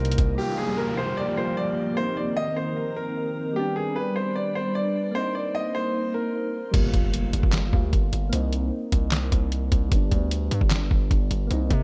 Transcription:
Already playing: C2 C3 A#3 C4 D#4 A#4
0.05 closed hi-hat
0.12 closed hi-hat
0.18 C2, kick, closed hi-hat
0.35 F3 G3 A#3 G4, downlifter
0.42 F4
0.58 G#4
0.77 A#4
0.97 C5
1.17 D5
1.35 G3 A#3 F4 C5
1.57 D5
1.94 D#3 A#3 C4 A#4 C5
2.00 D#4
2.17 D5
2.37 D#5
2.56 C5
2.96 A#4
3.53 G3 B3 D4 G4 B4
3.59 D4
3.76 G#4
3.96 B4
4.16 C5
4.36 D5
4.55 C5
4.75 D5
5.11 A#3 C4 D#4 C5
5.18 D#4
5.35 D5
5.55 D#5
5.75 C5
6.14 A#4
6.71 G1 G3 A#3, kick, closed hi-hat, crash, impact
6.78 F4
6.94 G1, kick, closed hi-hat
7.14 closed hi-hat
7.33 G1, closed hi-hat
7.43 G1, kick
7.52 snare, clap, closed hi-hat
7.71 D2 G3 A#3 F4, kick
7.93 G1, kick, closed hi-hat
8.13 G1, closed hi-hat
8.29 C2 A#3 C4, closed hi-hat
8.36 D#4
8.53 closed hi-hat
8.92 C2, kick, closed hi-hat
9.11 snare, clap, closed hi-hat
9.32 C2, kick, closed hi-hat
9.52 closed hi-hat
9.72 C2, kick, closed hi-hat
9.89 G1 G3 B3, kick, closed hi-hat
9.95 D4
10.11 D2, kick, closed hi-hat
10.31 closed hi-hat
10.51 G2, closed hi-hat
10.61 G1, kick
10.71 snare, clap, closed hi-hat
10.91 G1, kick
11.11 G1, kick, closed hi-hat
11.31 G1, closed hi-hat
11.47 C2 A#3 C4, closed hi-hat
11.53 D#4
11.70 C3, kick, closed hi-hat

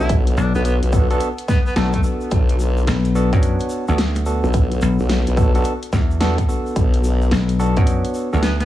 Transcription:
Already playing: B3 D4 F#4 A4
0.00 B1 E4
0.09 kick, closed hi-hat, shaker
0.27 closed hi-hat, shaker
0.37 B1 D4, shaker
0.55 B1 B3, shaker
0.65 B3, closed hi-hat, shaker
0.83 B1, closed hi-hat, shaker
0.93 B3 D4 F#4 A4, kick, shaker
1.10 B3 D4 F#4 A4, closed hi-hat, shaker
1.20 closed hi-hat, shaker
1.38 closed hi-hat, shaker
1.48 B3, kick, snare, shaker
1.66 B3, shaker
1.76 B1 A3 B3 D4 F#4 A4, snare, closed hi-hat, shaker
1.93 A3, kick, closed hi-hat, shaker
2.03 B3 D4 F#4 A4, shaker
2.21 shaker
2.31 B1, kick, closed hi-hat, shaker
2.49 closed hi-hat, shaker
2.59 shaker
2.77 shaker
2.87 B1, snare, closed hi-hat, shaker
3.04 closed hi-hat, shaker
3.15 B3 D4 F#4 A4, shaker
3.33 F#2 B3 D4 F#4 C#5, kick, closed hi-hat, shaker
3.42 closed hi-hat, shaker
3.59 closed hi-hat, shaker
3.69 shaker
3.88 D2 B3 D4 F#4 A4, shaker
3.98 snare, closed hi-hat, shaker
4.15 snare, closed hi-hat, shaker
4.26 B3 D4 F#4 A4, shaker
4.44 B1, shaker
4.53 kick, closed hi-hat, shaker
4.71 closed hi-hat, shaker
4.81 B1, snare, shaker
4.99 B1, shaker
5.09 snare, closed hi-hat, shaker
5.27 B1, closed hi-hat, shaker
5.37 B3 D4 F#4 A4, kick, shaker
5.55 B3 D4 F#4 A4, closed hi-hat, shaker
5.64 closed hi-hat, shaker
5.83 closed hi-hat, shaker
5.93 E2, kick, snare, shaker
6.11 shaker
6.21 B3 D4 F#4 A4, snare, closed hi-hat, shaker
6.38 kick, closed hi-hat, shaker
6.49 B3 D4 F#4 A4, shaker
6.66 shaker
6.76 B1, kick, closed hi-hat, shaker
6.94 closed hi-hat, shaker
7.04 shaker
7.21 shaker
7.31 B1, snare, closed hi-hat, shaker
7.49 closed hi-hat, shaker
7.59 B3 D4 F#4 A4, shaker
7.76 F#2 B3 D4 F#4 C#5, kick, closed hi-hat, shaker
7.87 closed hi-hat, shaker
8.05 closed hi-hat, shaker
8.14 shaker
8.33 D2 B3 D4 F#4 A4, shaker
8.43 B3, snare, closed hi-hat, shaker
8.60 B3, snare, closed hi-hat, shaker

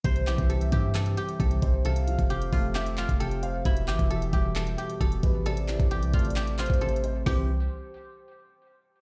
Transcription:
0.04 C2 C3 C5, kick, closed hi-hat
0.16 closed hi-hat
0.27 B1 E3 G4 E5, clap, closed hi-hat
0.38 C2, kick, closed hi-hat
0.50 C3 A4, closed hi-hat
0.61 closed hi-hat
0.72 G2 G3 G4, kick, closed hi-hat
0.95 A4, clap, closed hi-hat
1.06 closed hi-hat
1.17 G4, closed hi-hat
1.29 closed hi-hat
1.40 C2 C3 A4, kick, closed hi-hat
1.51 closed hi-hat
1.62 C2 C5, kick, closed hi-hat
1.85 C3 A4 F5, closed hi-hat
1.96 closed hi-hat
2.07 F3, closed hi-hat
2.19 F1, kick, closed hi-hat
2.30 C3 G4, closed hi-hat
2.42 closed hi-hat
2.53 F1 A3 F4, kick, open hi-hat
2.75 G4 E5, clap, closed hi-hat
2.86 closed hi-hat
2.98 F4 F5, clap, closed hi-hat
3.09 F1, kick, closed hi-hat
3.20 C3 A4 G5, closed hi-hat
3.31 closed hi-hat
3.43 C5 F5, closed hi-hat
3.65 E1 B2 E4, kick, closed hi-hat
3.77 closed hi-hat
3.88 G1 E3 G4 E5, clap, closed hi-hat
3.99 E1, kick, closed hi-hat
4.10 B2 A4, closed hi-hat
4.22 closed hi-hat
4.33 E1 G3 G4, kick, closed hi-hat
4.55 A4, clap, closed hi-hat
4.67 closed hi-hat
4.78 G4, closed hi-hat
4.90 closed hi-hat
5.01 E1 B2 A4, kick, closed hi-hat
5.12 closed hi-hat
5.23 A1 B4, kick, closed hi-hat
5.46 C3 A4 D5, closed hi-hat
5.57 closed hi-hat
5.68 E3, clap, closed hi-hat
5.80 A1, kick, closed hi-hat
5.91 C3 G4, closed hi-hat
6.02 C2, closed hi-hat
6.13 A1 A3 F4, kick, closed hi-hat
6.19 closed hi-hat
6.25 closed hi-hat
6.30 closed hi-hat
6.36 G4, clap, closed hi-hat
6.47 closed hi-hat
6.59 F4 C5, clap, closed hi-hat
6.66 A1, kick, closed hi-hat
6.74 closed hi-hat
6.81 C3 A4, closed hi-hat
6.89 closed hi-hat
6.96 closed hi-hat
7.04 C5, closed hi-hat
7.26 C2 C3 E3 G3 C4 G4 C5, kick, snare, open hi-hat

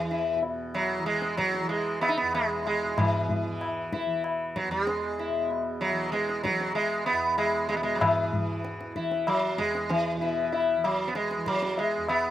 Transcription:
Already playing: E2 B2 E3
0.11 E4, tabla te
0.35 B2
0.43 tabla tin
0.74 F#3, tabla na
0.98 E3
1.06 G#3, tabla te
1.22 tabla te
1.37 F#3, tabla ke
1.54 tabla te
1.60 E3
1.69 G#3, tabla tin
2.01 B3, tabla na
2.09 D#4
2.17 B3
2.22 E2
2.35 G#3, tabla na
2.66 G#3, tabla na
2.84 B2
2.98 E3, tabla na, tabla ge
3.29 tabla ge
3.45 E3
3.61 tabla na
3.93 E4, tabla ke
4.06 E3
4.24 tabla na
4.56 F#3, tabla ke
4.67 E2
4.71 G#3, tabla te
4.87 tabla te
5.19 E4, tabla te
5.29 B2
5.51 tabla tin
5.81 F#3, tabla na
5.89 E3
6.12 G#3, tabla te
6.29 tabla te
6.43 F#3, tabla ke
6.50 E3
6.60 tabla te
6.75 G#3, tabla tin
7.06 B3, tabla na
7.12 E2
7.38 G#3, tabla na
7.69 G#3, tabla na
7.73 B2 B3
7.83 G#3
7.95 F#3
8.01 E3, tabla na, tabla ge
8.33 E3, tabla ge
8.64 tabla te
8.81 tabla te
8.96 E3 E4, tabla ke
9.11 tabla te
9.27 F#3, tabla na
9.56 E2 G#3, tabla ke
9.75 tabla te
9.89 E3, tabla te
10.17 B2
10.21 E4, tabla te
10.52 E4, tabla tin
10.77 E3
10.84 F#3, tabla na
11.08 B3
11.15 G#3, tabla te
11.31 tabla te
11.37 E3
11.46 F#3, tabla ke
11.62 tabla te
11.78 G#3, tabla tin
11.97 E2
12.08 B3, tabla na

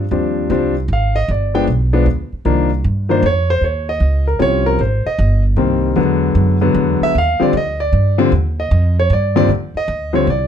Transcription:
0.11 D#2 F3 G3 C4 D4
0.50 C2 F3 G3 C4 D4
0.88 G#1
0.93 F5
1.16 D#5
1.28 G1 D5
1.54 F3 G#3 B3 D4 G5
1.67 B1
1.93 F3 G#3 B3 D4
2.06 D2
2.32 muted upright bass stroke
2.45 C2 D#3 F3 A#3 D4
2.84 G2
3.09 D#3 F3 A#3 D4 C5
3.23 F2 C#5
3.50 C5
3.61 D#2 C#5
3.89 D#5
4.00 C#2
4.27 A#4
4.39 C2 F3 G3 C4 C#4 C#5
4.66 A#4
4.79 G#1 C5
5.06 D#5, muted upright bass stroke
5.18 G1
5.56 C2 D#3 G3 A#3 C4
5.96 E2 D3 F#3 G#3 B3
6.35 F#2
6.61 D3 F#3 G#3 B3
6.74 E2
7.01 E5, muted upright bass stroke
7.15 D#2 F5
7.40 D3 F3 G3 C4 D5, muted upright bass stroke
7.53 D2
7.57 D#5
7.80 D5
7.93 G2
8.18 D3 F3 G3 C4
8.32 D#2
8.60 D#5
8.71 F2
8.99 C#5
9.10 G2 D5
9.35 D#2 D3 F3 G3 C4 D5
9.48 D#2
9.75 D#5, muted upright bass stroke
9.88 D2
10.13 D3 F3 G3 C4 C#5
10.27 C2 D5

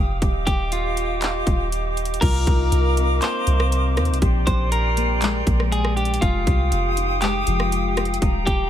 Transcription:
Already playing: F1 G4 F5 D#6
0.22 D#1 G4 D#5 D6, kick, closed hi-hat
0.47 D#1 G4, kick, closed hi-hat
0.72 F4, closed hi-hat
0.97 closed hi-hat
1.22 clap, closed hi-hat
1.47 D#1, kick, closed hi-hat
1.72 closed hi-hat
1.97 closed hi-hat
2.05 closed hi-hat
2.14 closed hi-hat
2.21 C2 F4 A#4 D#5 F5 D6, kick, closed hi-hat, crash
2.47 C2 D#4, kick, closed hi-hat
2.72 C2, closed hi-hat
2.97 C4, closed hi-hat
3.22 A#3 C5, clap, closed hi-hat
3.47 C2 C3, closed hi-hat
3.60 cross-stick
3.72 closed hi-hat
3.97 D#2 D#4, cross-stick, closed hi-hat
4.05 closed hi-hat
4.10 C2
4.14 closed hi-hat
4.22 A#1 G4 D5 G5 C6, kick, closed hi-hat
4.47 A#1 D4 C5, kick, closed hi-hat
4.72 A#4, closed hi-hat
4.97 A#3, closed hi-hat
5.22 G#3, clap, closed hi-hat
5.47 A#1 A#2, kick, closed hi-hat
5.60 cross-stick
5.72 G#4, closed hi-hat
5.85 cross-stick
5.97 D4 G4, closed hi-hat
6.05 closed hi-hat
6.14 closed hi-hat
6.21 F1 F4 G4 F5 G5 D#6, kick, closed hi-hat
6.47 C2 G4, kick, closed hi-hat
6.72 F1, closed hi-hat
6.97 D#4, closed hi-hat
7.21 G#3 G4, clap, closed hi-hat
7.46 F1 F3, closed hi-hat
7.60 cross-stick
7.72 closed hi-hat
7.96 G4, cross-stick, closed hi-hat
8.05 closed hi-hat
8.14 closed hi-hat
8.21 D#1 G4 G5 A#5 D#6, kick, closed hi-hat
8.47 D#1 G4, kick, closed hi-hat

